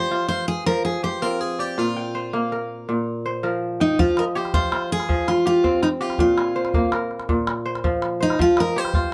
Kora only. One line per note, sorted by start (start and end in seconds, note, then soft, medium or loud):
0.00 0.65 F3 medium
0.00 1.03 G4 medium
0.00 0.28 A#4 medium
0.00 0.85 D5 medium
0.00 0.30 G5 medium
0.11 0.29 F4 medium
0.30 1.22 F4 medium
0.66 1.83 F3 medium
1.03 2.45 G4 medium
1.22 3.02 C4 medium
1.22 2.73 F4 medium
1.59 2.70 D5 medium
1.78 2.87 A#2 medium
1.96 2.90 G5 medium
2.15 3.25 C5 medium
2.33 4.26 A#3 medium
2.52 3.43 A#4 medium
2.89 4.04 A#2 medium
3.26 4.44 C5 medium
3.43 3.98 F3 medium
3.43 4.71 A#4 medium
3.80 4.73 G5 medium
3.99 5.08 F3 medium
4.18 5.25 D#5 medium
4.36 5.45 G4 medium
4.54 4.72 F4 medium
4.72 6.24 F4 medium
5.09 6.24 F3 medium
5.46 6.00 G4 medium
5.64 7.44 C4 medium
6.01 6.44 G4 medium
6.19 7.28 A#2 medium
6.38 7.28 G#5 medium
6.56 7.65 C5 medium
6.74 8.67 A#3 medium
6.93 8.20 A#4 medium
7.29 8.44 A#2 medium
7.66 8.20 C5 medium
7.84 8.38 F3 medium
8.20 9.14 C5 medium
8.39 9.14 F3 medium
8.58 9.14 D#5 medium
8.76 9.14 G4 medium
8.94 9.13 F4 medium